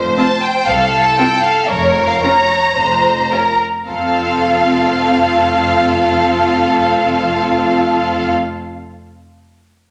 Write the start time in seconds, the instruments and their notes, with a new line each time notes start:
Already playing: double bass section F1, violin section C5
0.18 viola section C4 F4, violin section A5
0.43 violin section G5
0.68 cello section C2, double bass section C2, violin section A4 F5
1.03 violin section A5
1.19 viola section C4 F4, violin section G5
1.44 violin section F5
1.70 double bass section F1, cello section F2, violin section A#4 C#5
2.07 violin section F5
2.23 viola section C#4 F4, violin section C#5 A#5
2.76 double bass section F1, cello section F2, violin section C5
3.32 viola section C#4 F4, violin section A#4
3.88 double bass section F1, cello section F2, viola section C4 F4, violin section A4 F5